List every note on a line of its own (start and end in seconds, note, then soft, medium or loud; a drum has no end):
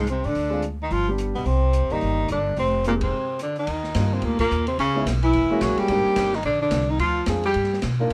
0.00 0.21 C2 medium
0.07 0.27 C4 medium
0.07 cross-stick medium
0.07 closed hi-hat soft
0.11 0.30 C3 medium
0.24 0.35 A2 medium
0.24 0.64 D4 loud
0.24 open hi-hat soft
0.29 0.65 D3 medium
0.35 0.88 D2 medium
0.35 open hi-hat soft
0.50 0.61 G#3 medium
0.50 0.62 C4 medium
0.50 0.62 D4 medium
0.50 0.62 F4 medium
0.62 closed hi-hat medium
0.83 0.95 D#3 medium
0.83 0.94 D#4 medium
0.91 1.32 G1 medium
0.91 1.09 F3 medium
0.91 1.08 F4 medium
0.91 open hi-hat soft
1.07 1.44 G3 medium
1.07 1.44 B3 medium
1.07 1.45 D4 medium
1.07 1.45 G4 medium
1.18 cross-stick medium
1.18 closed hi-hat medium
1.35 1.45 B1 medium
1.35 1.47 B2 medium
1.35 1.47 B3 medium
1.35 open hi-hat soft
1.46 1.80 C2 medium
1.46 1.94 C3 medium
1.46 1.94 C4 loud
1.46 open hi-hat soft
1.73 closed hi-hat medium
1.83 1.91 D#2 medium
1.90 2.01 G2 medium
1.90 2.30 D#3 medium
1.90 2.27 A#3 medium
1.90 2.28 D#4 medium
1.90 2.30 D#4 loud
1.90 2.28 G4 medium
1.90 2.27 D5 medium
1.90 open hi-hat soft
2.01 2.28 G1 medium
2.01 open hi-hat soft
2.28 2.55 G1 medium
2.28 2.56 D3 medium
2.28 2.57 D4 medium
2.28 cross-stick medium
2.28 closed hi-hat medium
2.56 3.10 F1 medium
2.56 2.83 C3 medium
2.56 2.84 C4 medium
2.56 open hi-hat soft
2.84 2.94 A#2 medium
2.84 3.13 G#3 medium
2.84 2.95 A#3 medium
2.84 3.13 C4 soft
2.84 3.13 D#4 soft
2.84 3.14 G4 medium
2.84 closed hi-hat medium
3.01 3.38 C3 medium
3.01 3.38 C4 medium
3.01 kick medium
3.01 ride medium
3.39 3.57 D3 medium
3.39 3.57 D4 medium
3.39 cross-stick medium
3.39 closed hi-hat soft
3.56 4.16 D#3 medium
3.56 4.15 D#4 medium
3.56 open hi-hat soft
3.67 3.94 D#2 medium
3.67 ride medium
3.84 snare soft
3.95 4.21 G2 medium
3.95 4.36 G3 medium
3.95 4.36 A#3 soft
3.95 4.37 D4 soft
3.95 4.37 D#4 medium
3.95 4.37 F4 medium
3.95 snare medium
3.95 hi-hat pedal medium
3.95 ride medium
4.14 4.25 C3 medium
4.14 4.26 C4 medium
4.22 4.38 D2 medium
4.22 4.39 A#2 medium
4.22 4.40 A#3 medium
4.22 ride medium
4.39 4.66 A#2 medium
4.39 4.66 A#3 medium
4.39 muted upright bass stroke soft
4.39 kick medium
4.39 crash medium
4.51 4.78 D#2 medium
4.51 hi-hat pedal medium
4.67 4.78 C3 medium
4.67 4.78 C4 medium
4.67 ride soft
4.78 5.05 C#2 medium
4.78 5.05 C#3 medium
4.78 5.05 C#4 loud
4.78 ride medium
4.95 5.05 G#3 medium
4.95 5.05 B3 medium
4.95 5.05 C#4 medium
4.95 5.06 D#4 medium
4.95 5.06 E4 medium
5.06 5.33 B1 medium
5.06 snare medium
5.06 hi-hat pedal medium
5.06 ride medium
5.23 5.64 E3 medium
5.23 5.64 E4 medium
5.23 ride soft
5.33 5.49 F#1 medium
5.33 ride medium
5.50 5.87 G#3 medium
5.50 5.87 A#3 medium
5.50 5.87 C#4 medium
5.50 5.87 E4 medium
5.50 5.88 F#4 medium
5.61 5.77 A#1 medium
5.61 5.80 F#3 medium
5.61 5.81 F#4 medium
5.61 snare medium
5.61 hi-hat pedal medium
5.61 ride medium
5.77 6.37 G3 loud
5.77 6.37 G4 loud
5.77 muted upright bass stroke soft
5.77 ride soft
5.88 6.04 G#1 medium
5.88 6.30 A#3 medium
5.88 6.31 C4 medium
5.88 6.31 D4 medium
5.88 6.31 D#4 medium
5.88 6.31 G4 medium
5.88 ride medium
6.05 muted upright bass stroke soft
6.16 6.43 G1 medium
6.16 snare medium
6.16 hi-hat pedal medium
6.16 ride medium
6.33 6.45 D#3 medium
6.33 6.45 D#4 medium
6.33 snare soft
6.43 6.71 A#1 medium
6.43 6.61 D3 medium
6.43 6.61 D4 loud
6.43 ride medium
6.62 6.92 D3 medium
6.62 6.92 D4 medium
6.71 6.98 C2 medium
6.71 snare medium
6.71 hi-hat pedal medium
6.71 ride medium
6.91 7.01 D#3 medium
6.91 7.00 D#4 medium
6.98 7.26 D2 medium
6.98 7.27 F3 medium
6.98 7.26 F4 loud
6.98 ride medium
7.26 7.54 F2 medium
7.26 7.42 G#3 medium
7.26 7.43 C4 medium
7.26 7.43 D4 medium
7.26 7.43 F4 medium
7.26 7.43 G#4 medium
7.26 snare medium
7.26 hi-hat pedal medium
7.26 ride medium
7.43 7.81 G3 medium
7.43 7.81 G4 medium
7.43 ride soft
7.54 7.82 G2 medium
7.54 ride medium
7.64 snare soft
7.73 snare soft
7.82 8.10 B2 medium
7.82 snare medium
7.82 hi-hat pedal medium
7.82 ride medium
8.00 8.09 A#3 medium
8.00 8.10 D4 medium
8.00 8.10 D#4 medium
8.00 8.10 F4 medium
8.00 8.10 A#4 medium